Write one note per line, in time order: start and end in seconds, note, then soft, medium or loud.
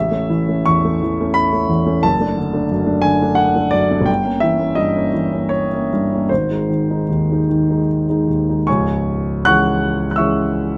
0.00 0.67 E5 medium
0.11 0.28 A3 soft
0.11 0.29 C#4 soft
0.30 0.60 E3 soft
0.48 0.66 A3 soft
0.48 0.65 C#4 soft
0.66 0.96 E2 soft
0.66 1.35 C#6 medium
0.85 1.00 A3 soft
0.85 1.01 C#4 soft
1.03 1.30 E3 soft
1.21 1.51 A3 soft
1.21 1.51 C#4 soft
1.34 2.03 B5 loud
1.53 1.68 A3 soft
1.53 1.68 C#4 soft
1.69 1.97 E2 soft
1.87 2.02 A3 soft
1.87 2.02 C#4 soft
2.03 2.21 F#1 medium
2.03 3.06 A5 medium
2.20 2.36 A3 soft
2.20 2.37 D4 soft
2.37 2.65 D3 soft
2.53 2.70 A3 soft
2.53 2.71 D4 soft
2.71 2.99 F#2 soft
2.86 3.03 A3 soft
2.86 3.03 D4 medium
3.02 3.32 D3 soft
3.02 3.38 G#5 loud
3.22 3.53 A3 soft
3.22 3.53 D4 medium
3.35 3.72 F#5 medium
3.56 3.72 A3 soft
3.56 3.72 D4 soft
3.71 4.01 F#2 soft
3.71 4.07 D5 medium
3.91 4.07 A3 soft
3.91 4.07 D4 soft
4.01 4.21 G1 medium
4.06 4.42 G5 medium
4.24 4.41 A#3 soft
4.24 4.41 C#4 soft
4.40 4.72 E3 soft
4.40 4.77 E5 medium
4.59 4.76 A#3 soft
4.59 4.76 C#4 soft
4.75 5.07 G2 soft
4.75 5.50 D#5 medium
4.96 5.13 A#3 soft
4.96 5.13 C#4 soft
5.14 5.44 E3 soft
5.33 5.67 A#3 soft
5.33 5.67 C#4 soft
5.49 6.28 C#5 medium
5.73 5.89 A#3 soft
5.73 5.89 C#4 soft
5.93 6.23 G2 soft
6.13 6.29 A#3 soft
6.13 6.30 C#4 soft
6.29 6.50 G#1 soft
6.29 7.88 C5 medium
6.51 6.68 G#3 soft
6.51 6.68 D#4 soft
6.69 7.01 D#3 soft
6.90 7.07 G#3 soft
6.90 7.08 D#4 soft
7.09 7.41 D#2 soft
7.30 7.47 G#3 soft
7.30 7.48 D#4 soft
7.49 7.81 D#3 soft
7.70 8.05 G#3 soft
7.70 8.05 D#4 soft
8.09 8.27 G#3 soft
8.09 8.27 D#4 soft
8.28 8.59 D#2 soft
8.50 8.66 G#3 soft
8.50 8.66 D#4 soft
8.67 10.78 C#1 soft
8.67 10.78 C#2 medium
8.67 9.43 C#5 medium
8.67 9.43 G#5 medium
8.67 9.45 C#6 medium
9.45 10.14 E3 soft
9.45 10.14 G#3 soft
9.45 10.15 C#4 soft
9.45 10.07 F#5 medium
9.45 10.07 C#6 medium
9.45 10.10 F#6 loud
10.11 10.18 F#6 medium
10.16 10.78 E3 soft
10.16 10.78 G#3 soft
10.16 10.78 C#4 soft
10.16 10.78 E5 medium
10.16 10.78 C#6 medium
10.16 10.78 E6 medium